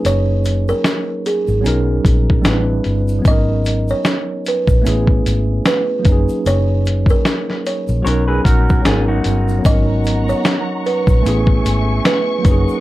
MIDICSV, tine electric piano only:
0, 0, Header, 1, 2, 480
1, 0, Start_track
1, 0, Tempo, 800000
1, 29, Time_signature, 4, 2, 24, 8
1, 7682, End_track
2, 0, Start_track
2, 0, Title_t, "Tine electric piano"
2, 0, Program_c, 0, 4
2, 0, Control_c, 0, 64, 127
2, 0, Note_on_c, 0, 54, 66
2, 0, Note_on_c, 0, 58, 62
2, 0, Note_on_c, 0, 61, 59
2, 0, Note_on_c, 0, 63, 62
2, 0, Note_on_c, 0, 68, 71
2, 945, Note_off_c, 0, 54, 0
2, 964, Note_off_c, 0, 61, 0
2, 966, Note_on_c, 0, 54, 74
2, 974, Note_off_c, 0, 58, 0
2, 974, Note_off_c, 0, 63, 0
2, 975, Note_on_c, 0, 59, 65
2, 983, Note_off_c, 0, 68, 0
2, 985, Note_on_c, 0, 61, 68
2, 994, Note_on_c, 0, 63, 70
2, 996, Control_c, 0, 64, 0
2, 1005, Note_on_c, 0, 70, 86
2, 1090, Control_c, 0, 64, 127
2, 1450, Note_on_c, 0, 55, 77
2, 1458, Note_off_c, 0, 54, 0
2, 1460, Note_on_c, 0, 60, 69
2, 1462, Note_off_c, 0, 59, 0
2, 1467, Note_off_c, 0, 61, 0
2, 1468, Note_on_c, 0, 62, 72
2, 1472, Note_off_c, 0, 63, 0
2, 1476, Control_c, 0, 64, 0
2, 1477, Note_off_c, 0, 70, 0
2, 1478, Note_on_c, 0, 64, 68
2, 1488, Note_on_c, 0, 71, 86
2, 1586, Control_c, 0, 64, 127
2, 1912, Note_on_c, 0, 54, 63
2, 1931, Note_on_c, 0, 59, 62
2, 1940, Note_off_c, 0, 55, 0
2, 1945, Note_off_c, 0, 60, 0
2, 1949, Note_off_c, 0, 62, 0
2, 1951, Note_on_c, 0, 61, 61
2, 1954, Note_off_c, 0, 64, 0
2, 1958, Control_c, 0, 64, 0
2, 1959, Note_off_c, 0, 71, 0
2, 1969, Note_on_c, 0, 63, 59
2, 1988, Note_on_c, 0, 70, 72
2, 2058, Control_c, 0, 64, 127
2, 2871, Note_off_c, 0, 54, 0
2, 2881, Note_off_c, 0, 59, 0
2, 2890, Note_on_c, 0, 57, 72
2, 2891, Note_off_c, 0, 61, 0
2, 2900, Note_off_c, 0, 63, 0
2, 2901, Note_on_c, 0, 59, 66
2, 2910, Note_off_c, 0, 70, 0
2, 2911, Note_on_c, 0, 61, 64
2, 2918, Control_c, 0, 64, 0
2, 2919, Note_on_c, 0, 64, 65
2, 2930, Note_on_c, 0, 68, 78
2, 3031, Control_c, 0, 64, 127
2, 3595, Note_on_c, 0, 54, 68
2, 3614, Note_on_c, 0, 58, 58
2, 3620, Note_off_c, 0, 57, 0
2, 3625, Note_off_c, 0, 59, 0
2, 3626, Note_off_c, 0, 61, 0
2, 3633, Note_on_c, 0, 61, 57
2, 3634, Note_off_c, 0, 64, 0
2, 3637, Control_c, 0, 64, 0
2, 3640, Note_off_c, 0, 68, 0
2, 3653, Note_on_c, 0, 63, 63
2, 3672, Note_on_c, 0, 68, 71
2, 3749, Control_c, 0, 64, 127
2, 4788, Note_off_c, 0, 54, 0
2, 4798, Note_off_c, 0, 58, 0
2, 4808, Note_off_c, 0, 61, 0
2, 4814, Note_on_c, 0, 54, 75
2, 4817, Note_off_c, 0, 63, 0
2, 4824, Note_on_c, 0, 59, 65
2, 4827, Note_off_c, 0, 68, 0
2, 4833, Note_on_c, 0, 61, 69
2, 4838, Control_c, 0, 64, 0
2, 4842, Note_on_c, 0, 63, 62
2, 4851, Note_on_c, 0, 70, 79
2, 4951, Control_c, 0, 64, 127
2, 5288, Note_off_c, 0, 54, 0
2, 5295, Note_on_c, 0, 54, 73
2, 5303, Note_on_c, 0, 58, 59
2, 5304, Note_off_c, 0, 61, 0
2, 5307, Note_off_c, 0, 59, 0
2, 5312, Note_on_c, 0, 61, 65
2, 5316, Note_off_c, 0, 63, 0
2, 5317, Control_c, 0, 64, 0
2, 5320, Note_off_c, 0, 70, 0
2, 5322, Note_on_c, 0, 63, 68
2, 5332, Note_on_c, 0, 70, 78
2, 5342, Note_on_c, 0, 59, 69
2, 5351, Note_off_c, 0, 58, 0
2, 5406, Control_c, 0, 64, 127
2, 5744, Note_off_c, 0, 54, 0
2, 5751, Note_on_c, 0, 54, 66
2, 5764, Note_off_c, 0, 59, 0
2, 5771, Note_on_c, 0, 59, 58
2, 5783, Note_off_c, 0, 61, 0
2, 5790, Note_on_c, 0, 61, 62
2, 5796, Note_off_c, 0, 63, 0
2, 5798, Control_c, 0, 64, 0
2, 5801, Note_off_c, 0, 70, 0
2, 5811, Note_on_c, 0, 63, 61
2, 5829, Note_on_c, 0, 70, 69
2, 5892, Control_c, 0, 64, 127
2, 6711, Note_off_c, 0, 54, 0
2, 6721, Note_off_c, 0, 59, 0
2, 6731, Note_off_c, 0, 61, 0
2, 6733, Note_on_c, 0, 57, 76
2, 6741, Note_off_c, 0, 63, 0
2, 6742, Note_on_c, 0, 59, 72
2, 6750, Note_off_c, 0, 70, 0
2, 6751, Note_on_c, 0, 61, 64
2, 6758, Control_c, 0, 64, 0
2, 6761, Note_on_c, 0, 64, 66
2, 6770, Note_on_c, 0, 68, 81
2, 6862, Control_c, 0, 64, 127
2, 7430, Note_on_c, 0, 54, 69
2, 7449, Note_on_c, 0, 58, 64
2, 7461, Note_off_c, 0, 57, 0
2, 7461, Note_off_c, 0, 61, 0
2, 7466, Note_off_c, 0, 59, 0
2, 7468, Note_on_c, 0, 61, 62
2, 7475, Note_off_c, 0, 64, 0
2, 7478, Control_c, 0, 64, 0
2, 7480, Note_off_c, 0, 68, 0
2, 7488, Note_on_c, 0, 63, 60
2, 7508, Note_on_c, 0, 68, 72
2, 7593, Control_c, 0, 64, 127
2, 7682, Note_off_c, 0, 54, 0
2, 7682, Note_off_c, 0, 58, 0
2, 7682, Note_off_c, 0, 61, 0
2, 7682, Note_off_c, 0, 63, 0
2, 7682, Note_off_c, 0, 68, 0
2, 7682, End_track
0, 0, End_of_file